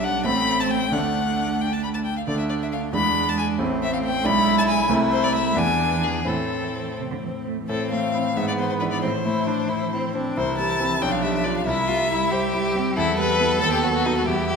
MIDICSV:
0, 0, Header, 1, 5, 480
1, 0, Start_track
1, 0, Key_signature, 0, "minor"
1, 0, Tempo, 449102
1, 995, Time_signature, 6, 3, 24, 8
1, 3399, Tempo, 436681
1, 6279, Tempo, 472813
1, 8199, Tempo, 450113
1, 9159, Tempo, 444115
1, 11079, Tempo, 434153
1, 15713, End_track
2, 0, Start_track
2, 0, Title_t, "Violin"
2, 0, Program_c, 0, 40
2, 42, Note_on_c, 0, 78, 75
2, 266, Note_off_c, 0, 78, 0
2, 273, Note_on_c, 0, 83, 95
2, 643, Note_on_c, 0, 81, 74
2, 659, Note_off_c, 0, 83, 0
2, 756, Note_on_c, 0, 79, 82
2, 772, Note_off_c, 0, 81, 0
2, 994, Note_on_c, 0, 78, 76
2, 1010, Note_off_c, 0, 79, 0
2, 1720, Note_on_c, 0, 79, 64
2, 1736, Note_off_c, 0, 78, 0
2, 1847, Note_on_c, 0, 81, 49
2, 1863, Note_off_c, 0, 79, 0
2, 1957, Note_off_c, 0, 81, 0
2, 1963, Note_on_c, 0, 83, 56
2, 2012, Note_off_c, 0, 83, 0
2, 2075, Note_on_c, 0, 81, 49
2, 2126, Note_off_c, 0, 81, 0
2, 2187, Note_on_c, 0, 79, 59
2, 2316, Note_off_c, 0, 79, 0
2, 2324, Note_on_c, 0, 77, 43
2, 2372, Note_off_c, 0, 77, 0
2, 2431, Note_on_c, 0, 74, 65
2, 2545, Note_off_c, 0, 74, 0
2, 2551, Note_on_c, 0, 76, 55
2, 2602, Note_off_c, 0, 76, 0
2, 2667, Note_on_c, 0, 74, 54
2, 2718, Note_off_c, 0, 74, 0
2, 2806, Note_on_c, 0, 76, 59
2, 2853, Note_off_c, 0, 76, 0
2, 2912, Note_on_c, 0, 77, 62
2, 2998, Note_off_c, 0, 77, 0
2, 3154, Note_on_c, 0, 83, 81
2, 3518, Note_on_c, 0, 81, 79
2, 3535, Note_off_c, 0, 83, 0
2, 3615, Note_off_c, 0, 81, 0
2, 3622, Note_on_c, 0, 80, 70
2, 3710, Note_off_c, 0, 80, 0
2, 4109, Note_on_c, 0, 76, 77
2, 4223, Note_off_c, 0, 76, 0
2, 4228, Note_on_c, 0, 77, 67
2, 4277, Note_off_c, 0, 77, 0
2, 4346, Note_on_c, 0, 79, 78
2, 4580, Note_on_c, 0, 83, 87
2, 4596, Note_off_c, 0, 79, 0
2, 4932, Note_off_c, 0, 83, 0
2, 4939, Note_on_c, 0, 81, 85
2, 4988, Note_off_c, 0, 81, 0
2, 5053, Note_on_c, 0, 80, 86
2, 5293, Note_off_c, 0, 80, 0
2, 5529, Note_on_c, 0, 72, 82
2, 5660, Note_on_c, 0, 74, 89
2, 5676, Note_off_c, 0, 72, 0
2, 5777, Note_off_c, 0, 74, 0
2, 5784, Note_on_c, 0, 76, 80
2, 6037, Note_on_c, 0, 80, 87
2, 6053, Note_off_c, 0, 76, 0
2, 6518, Note_on_c, 0, 68, 76
2, 6534, Note_off_c, 0, 80, 0
2, 6759, Note_on_c, 0, 69, 69
2, 6775, Note_off_c, 0, 68, 0
2, 7483, Note_off_c, 0, 69, 0
2, 8199, Note_on_c, 0, 69, 73
2, 8422, Note_off_c, 0, 69, 0
2, 8431, Note_on_c, 0, 77, 66
2, 8920, Note_on_c, 0, 76, 62
2, 8936, Note_off_c, 0, 77, 0
2, 9032, Note_off_c, 0, 76, 0
2, 9039, Note_on_c, 0, 74, 67
2, 9086, Note_off_c, 0, 74, 0
2, 9159, Note_on_c, 0, 72, 58
2, 9261, Note_off_c, 0, 72, 0
2, 9267, Note_on_c, 0, 72, 67
2, 9317, Note_off_c, 0, 72, 0
2, 9382, Note_on_c, 0, 71, 60
2, 9433, Note_off_c, 0, 71, 0
2, 9505, Note_on_c, 0, 74, 65
2, 9619, Note_off_c, 0, 74, 0
2, 9626, Note_on_c, 0, 72, 72
2, 10811, Note_off_c, 0, 72, 0
2, 11081, Note_on_c, 0, 72, 82
2, 11303, Note_off_c, 0, 72, 0
2, 11312, Note_on_c, 0, 81, 74
2, 11799, Note_on_c, 0, 79, 77
2, 11816, Note_off_c, 0, 81, 0
2, 11906, Note_on_c, 0, 77, 66
2, 11923, Note_off_c, 0, 79, 0
2, 12018, Note_off_c, 0, 77, 0
2, 12025, Note_on_c, 0, 76, 69
2, 12145, Note_off_c, 0, 76, 0
2, 12154, Note_on_c, 0, 76, 72
2, 12269, Note_on_c, 0, 74, 64
2, 12286, Note_off_c, 0, 76, 0
2, 12389, Note_off_c, 0, 74, 0
2, 12405, Note_on_c, 0, 77, 63
2, 12504, Note_off_c, 0, 77, 0
2, 12511, Note_on_c, 0, 76, 88
2, 13687, Note_off_c, 0, 76, 0
2, 13956, Note_on_c, 0, 64, 95
2, 14177, Note_off_c, 0, 64, 0
2, 14196, Note_on_c, 0, 71, 92
2, 14659, Note_off_c, 0, 71, 0
2, 14666, Note_on_c, 0, 69, 93
2, 14783, Note_off_c, 0, 69, 0
2, 14789, Note_on_c, 0, 67, 73
2, 14897, Note_off_c, 0, 67, 0
2, 14903, Note_on_c, 0, 66, 76
2, 14953, Note_off_c, 0, 66, 0
2, 15035, Note_on_c, 0, 66, 78
2, 15161, Note_on_c, 0, 63, 82
2, 15178, Note_off_c, 0, 66, 0
2, 15279, Note_off_c, 0, 63, 0
2, 15289, Note_on_c, 0, 66, 69
2, 15389, Note_off_c, 0, 66, 0
2, 15396, Note_on_c, 0, 64, 76
2, 15713, Note_off_c, 0, 64, 0
2, 15713, End_track
3, 0, Start_track
3, 0, Title_t, "Violin"
3, 0, Program_c, 1, 40
3, 0, Note_on_c, 1, 62, 51
3, 275, Note_on_c, 1, 60, 64
3, 291, Note_off_c, 1, 62, 0
3, 984, Note_off_c, 1, 60, 0
3, 990, Note_on_c, 1, 62, 47
3, 2206, Note_off_c, 1, 62, 0
3, 2439, Note_on_c, 1, 62, 45
3, 3116, Note_off_c, 1, 62, 0
3, 3163, Note_on_c, 1, 62, 52
3, 3872, Note_on_c, 1, 60, 58
3, 3888, Note_off_c, 1, 62, 0
3, 4579, Note_on_c, 1, 64, 75
3, 4595, Note_off_c, 1, 60, 0
3, 5291, Note_off_c, 1, 64, 0
3, 5297, Note_on_c, 1, 64, 65
3, 6018, Note_on_c, 1, 62, 65
3, 6034, Note_off_c, 1, 64, 0
3, 6750, Note_off_c, 1, 62, 0
3, 6761, Note_on_c, 1, 60, 47
3, 7966, Note_off_c, 1, 60, 0
3, 8192, Note_on_c, 1, 60, 52
3, 8873, Note_off_c, 1, 60, 0
3, 8911, Note_on_c, 1, 59, 60
3, 9616, Note_off_c, 1, 59, 0
3, 9630, Note_on_c, 1, 60, 56
3, 9716, Note_off_c, 1, 60, 0
3, 9873, Note_on_c, 1, 64, 56
3, 10109, Note_on_c, 1, 62, 58
3, 10125, Note_off_c, 1, 64, 0
3, 10347, Note_on_c, 1, 64, 68
3, 10363, Note_off_c, 1, 62, 0
3, 10594, Note_off_c, 1, 64, 0
3, 10607, Note_on_c, 1, 60, 50
3, 10838, Note_off_c, 1, 60, 0
3, 10844, Note_on_c, 1, 62, 53
3, 11084, Note_on_c, 1, 64, 61
3, 11101, Note_off_c, 1, 62, 0
3, 11797, Note_off_c, 1, 64, 0
3, 11809, Note_on_c, 1, 62, 67
3, 12503, Note_off_c, 1, 62, 0
3, 12508, Note_on_c, 1, 64, 63
3, 12756, Note_on_c, 1, 65, 72
3, 12772, Note_off_c, 1, 64, 0
3, 12990, Note_off_c, 1, 65, 0
3, 12997, Note_on_c, 1, 64, 69
3, 13224, Note_on_c, 1, 67, 75
3, 13240, Note_off_c, 1, 64, 0
3, 13953, Note_on_c, 1, 69, 73
3, 13969, Note_off_c, 1, 67, 0
3, 15383, Note_on_c, 1, 67, 67
3, 15400, Note_off_c, 1, 69, 0
3, 15616, Note_off_c, 1, 67, 0
3, 15622, Note_on_c, 1, 67, 68
3, 15713, Note_off_c, 1, 67, 0
3, 15713, End_track
4, 0, Start_track
4, 0, Title_t, "Grand piano"
4, 0, Program_c, 2, 0
4, 0, Control_c, 2, 64, 127
4, 0, Note_on_c, 2, 35, 51
4, 0, Note_on_c, 2, 55, 44
4, 0, Note_on_c, 2, 62, 46
4, 0, Note_on_c, 2, 74, 47
4, 246, Note_off_c, 2, 35, 0
4, 247, Note_off_c, 2, 55, 0
4, 252, Note_off_c, 2, 62, 0
4, 255, Note_off_c, 2, 74, 0
4, 259, Note_on_c, 2, 33, 49
4, 265, Note_on_c, 2, 57, 42
4, 267, Note_on_c, 2, 60, 45
4, 273, Note_on_c, 2, 69, 43
4, 295, Control_c, 2, 64, 0
4, 471, Control_c, 2, 64, 127
4, 965, Note_off_c, 2, 33, 0
4, 966, Note_off_c, 2, 57, 0
4, 969, Note_off_c, 2, 60, 0
4, 972, Note_off_c, 2, 69, 0
4, 979, Note_on_c, 2, 38, 44
4, 982, Note_on_c, 2, 57, 40
4, 987, Note_on_c, 2, 62, 38
4, 992, Note_on_c, 2, 69, 37
4, 1015, Control_c, 2, 64, 0
4, 1182, Control_c, 2, 64, 127
4, 2398, Note_off_c, 2, 38, 0
4, 2400, Note_off_c, 2, 57, 0
4, 2402, Note_off_c, 2, 62, 0
4, 2404, Note_off_c, 2, 69, 0
4, 2427, Note_on_c, 2, 38, 47
4, 2430, Note_on_c, 2, 57, 37
4, 2435, Note_on_c, 2, 62, 38
4, 2443, Note_on_c, 2, 69, 36
4, 2470, Control_c, 2, 64, 0
4, 2639, Control_c, 2, 64, 127
4, 3125, Note_off_c, 2, 62, 0
4, 3128, Note_on_c, 2, 40, 51
4, 3131, Note_off_c, 2, 38, 0
4, 3132, Note_off_c, 2, 57, 0
4, 3135, Note_on_c, 2, 56, 41
4, 3139, Note_off_c, 2, 69, 0
4, 3141, Note_on_c, 2, 62, 40
4, 3147, Note_on_c, 2, 64, 38
4, 3186, Control_c, 2, 64, 0
4, 3352, Control_c, 2, 64, 127
4, 3833, Note_off_c, 2, 40, 0
4, 3837, Note_off_c, 2, 56, 0
4, 3840, Note_off_c, 2, 62, 0
4, 3843, Note_off_c, 2, 64, 0
4, 3844, Note_on_c, 2, 33, 53
4, 3850, Note_on_c, 2, 57, 51
4, 3856, Note_on_c, 2, 60, 48
4, 3863, Note_on_c, 2, 64, 47
4, 3894, Control_c, 2, 64, 0
4, 4068, Control_c, 2, 64, 127
4, 4555, Note_off_c, 2, 33, 0
4, 4558, Note_off_c, 2, 57, 0
4, 4561, Note_off_c, 2, 60, 0
4, 4563, Note_on_c, 2, 35, 60
4, 4564, Note_off_c, 2, 64, 0
4, 4568, Note_on_c, 2, 56, 49
4, 4572, Note_on_c, 2, 62, 54
4, 4581, Note_on_c, 2, 64, 48
4, 4613, Control_c, 2, 64, 0
4, 4785, Control_c, 2, 64, 127
4, 5268, Note_off_c, 2, 35, 0
4, 5271, Note_off_c, 2, 56, 0
4, 5273, Note_off_c, 2, 62, 0
4, 5275, Note_on_c, 2, 36, 63
4, 5278, Note_off_c, 2, 64, 0
4, 5285, Note_on_c, 2, 57, 56
4, 5285, Note_on_c, 2, 60, 48
4, 5295, Note_on_c, 2, 64, 55
4, 5325, Control_c, 2, 64, 0
4, 5516, Control_c, 2, 64, 127
4, 5993, Note_off_c, 2, 36, 0
4, 5998, Note_off_c, 2, 57, 0
4, 5998, Note_off_c, 2, 60, 0
4, 6003, Note_off_c, 2, 64, 0
4, 6005, Note_on_c, 2, 40, 55
4, 6013, Note_on_c, 2, 59, 45
4, 6020, Note_on_c, 2, 62, 52
4, 6023, Note_on_c, 2, 64, 49
4, 6053, Control_c, 2, 64, 0
4, 6231, Control_c, 2, 64, 127
4, 6722, Note_off_c, 2, 40, 0
4, 6726, Note_off_c, 2, 59, 0
4, 6729, Note_off_c, 2, 62, 0
4, 6731, Note_off_c, 2, 64, 0
4, 6734, Note_on_c, 2, 45, 48
4, 6740, Note_on_c, 2, 57, 40
4, 6744, Note_on_c, 2, 60, 44
4, 6747, Note_on_c, 2, 64, 43
4, 6774, Control_c, 2, 64, 0
4, 6957, Control_c, 2, 64, 127
4, 8148, Note_off_c, 2, 45, 0
4, 8150, Note_off_c, 2, 57, 0
4, 8153, Note_off_c, 2, 60, 0
4, 8154, Note_off_c, 2, 64, 0
4, 8200, Note_on_c, 2, 45, 55
4, 8221, Control_c, 2, 64, 0
4, 8393, Control_c, 2, 64, 127
4, 8442, Note_on_c, 2, 57, 44
4, 8684, Note_on_c, 2, 60, 36
4, 8686, Note_on_c, 2, 64, 42
4, 8825, Note_off_c, 2, 57, 0
4, 8898, Note_off_c, 2, 45, 0
4, 8898, Note_off_c, 2, 60, 0
4, 8899, Note_off_c, 2, 64, 0
4, 8921, Note_on_c, 2, 44, 55
4, 8942, Control_c, 2, 64, 0
4, 9138, Control_c, 2, 64, 127
4, 9157, Note_on_c, 2, 59, 40
4, 9397, Note_on_c, 2, 62, 38
4, 9401, Note_on_c, 2, 64, 48
4, 9539, Note_off_c, 2, 59, 0
4, 9611, Note_off_c, 2, 62, 0
4, 9613, Note_off_c, 2, 64, 0
4, 9614, Note_off_c, 2, 44, 0
4, 9632, Note_on_c, 2, 45, 53
4, 9657, Control_c, 2, 64, 0
4, 9859, Control_c, 2, 64, 127
4, 9872, Note_on_c, 2, 57, 44
4, 10109, Note_on_c, 2, 64, 46
4, 10260, Note_off_c, 2, 57, 0
4, 10354, Note_on_c, 2, 72, 45
4, 10500, Note_off_c, 2, 64, 0
4, 10604, Note_on_c, 2, 64, 43
4, 10741, Note_off_c, 2, 72, 0
4, 10846, Note_on_c, 2, 60, 46
4, 10985, Note_off_c, 2, 64, 0
4, 11034, Note_off_c, 2, 45, 0
4, 11081, Note_off_c, 2, 60, 0
4, 11082, Note_on_c, 2, 36, 61
4, 11100, Control_c, 2, 64, 0
4, 11258, Control_c, 2, 64, 127
4, 11325, Note_on_c, 2, 55, 43
4, 11556, Note_on_c, 2, 60, 45
4, 11562, Note_on_c, 2, 64, 45
4, 11702, Note_off_c, 2, 55, 0
4, 11770, Note_off_c, 2, 60, 0
4, 11773, Note_off_c, 2, 64, 0
4, 11775, Note_off_c, 2, 36, 0
4, 11798, Note_on_c, 2, 35, 62
4, 11813, Control_c, 2, 64, 0
4, 12006, Control_c, 2, 64, 127
4, 12030, Note_on_c, 2, 55, 52
4, 12270, Note_on_c, 2, 62, 45
4, 12275, Note_on_c, 2, 65, 48
4, 12413, Note_off_c, 2, 55, 0
4, 12486, Note_off_c, 2, 62, 0
4, 12488, Note_off_c, 2, 65, 0
4, 12491, Note_off_c, 2, 35, 0
4, 12515, Note_on_c, 2, 36, 62
4, 12531, Control_c, 2, 64, 0
4, 12734, Control_c, 2, 64, 127
4, 12759, Note_on_c, 2, 55, 46
4, 13001, Note_on_c, 2, 64, 49
4, 13143, Note_off_c, 2, 55, 0
4, 13239, Note_on_c, 2, 72, 60
4, 13380, Note_off_c, 2, 64, 0
4, 13476, Note_on_c, 2, 64, 51
4, 13618, Note_off_c, 2, 72, 0
4, 13716, Note_on_c, 2, 60, 50
4, 13858, Note_off_c, 2, 64, 0
4, 13911, Note_off_c, 2, 36, 0
4, 13954, Note_off_c, 2, 60, 0
4, 13960, Note_on_c, 2, 40, 58
4, 13972, Control_c, 2, 64, 0
4, 14124, Control_c, 2, 64, 127
4, 14199, Note_on_c, 2, 55, 49
4, 14434, Note_on_c, 2, 59, 42
4, 14439, Note_on_c, 2, 64, 49
4, 14576, Note_off_c, 2, 55, 0
4, 14647, Note_off_c, 2, 59, 0
4, 14650, Note_off_c, 2, 64, 0
4, 14651, Note_off_c, 2, 40, 0
4, 14676, Note_on_c, 2, 39, 66
4, 14691, Control_c, 2, 64, 0
4, 14841, Control_c, 2, 64, 127
4, 14919, Note_on_c, 2, 54, 48
4, 15158, Note_on_c, 2, 59, 44
4, 15162, Note_on_c, 2, 66, 54
4, 15303, Note_off_c, 2, 54, 0
4, 15375, Note_off_c, 2, 59, 0
4, 15377, Note_off_c, 2, 66, 0
4, 15378, Note_off_c, 2, 39, 0
4, 15400, Note_on_c, 2, 40, 59
4, 15417, Control_c, 2, 64, 0
4, 15598, Control_c, 2, 64, 127
4, 15645, Note_on_c, 2, 55, 41
4, 15713, Note_off_c, 2, 40, 0
4, 15713, Note_off_c, 2, 55, 0
4, 15713, End_track
5, 0, Start_track
5, 0, Title_t, "Cello"
5, 0, Program_c, 3, 42
5, 0, Note_on_c, 3, 55, 60
5, 274, Note_on_c, 3, 57, 70
5, 290, Note_off_c, 3, 55, 0
5, 981, Note_off_c, 3, 57, 0
5, 988, Note_on_c, 3, 57, 56
5, 2205, Note_off_c, 3, 57, 0
5, 2452, Note_on_c, 3, 57, 49
5, 3166, Note_on_c, 3, 56, 60
5, 3182, Note_off_c, 3, 57, 0
5, 3862, Note_off_c, 3, 56, 0
5, 3868, Note_on_c, 3, 57, 59
5, 4584, Note_on_c, 3, 56, 72
5, 4600, Note_off_c, 3, 57, 0
5, 5283, Note_off_c, 3, 56, 0
5, 5290, Note_on_c, 3, 57, 69
5, 6022, Note_on_c, 3, 52, 74
5, 6038, Note_off_c, 3, 57, 0
5, 6752, Note_off_c, 3, 52, 0
5, 6767, Note_on_c, 3, 52, 51
5, 7425, Note_off_c, 3, 52, 0
5, 7482, Note_on_c, 3, 48, 69
5, 7530, Note_off_c, 3, 48, 0
5, 7610, Note_on_c, 3, 50, 54
5, 7656, Note_off_c, 3, 50, 0
5, 7721, Note_on_c, 3, 52, 50
5, 7802, Note_off_c, 3, 52, 0
5, 7960, Note_on_c, 3, 57, 55
5, 8188, Note_off_c, 3, 57, 0
5, 8194, Note_on_c, 3, 52, 50
5, 11032, Note_off_c, 3, 52, 0
5, 11078, Note_on_c, 3, 52, 56
5, 11802, Note_on_c, 3, 53, 66
5, 11819, Note_off_c, 3, 52, 0
5, 12508, Note_off_c, 3, 53, 0
5, 12515, Note_on_c, 3, 55, 67
5, 14673, Note_on_c, 3, 59, 66
5, 14690, Note_off_c, 3, 55, 0
5, 15391, Note_off_c, 3, 59, 0
5, 15397, Note_on_c, 3, 55, 60
5, 15713, Note_off_c, 3, 55, 0
5, 15713, End_track
0, 0, End_of_file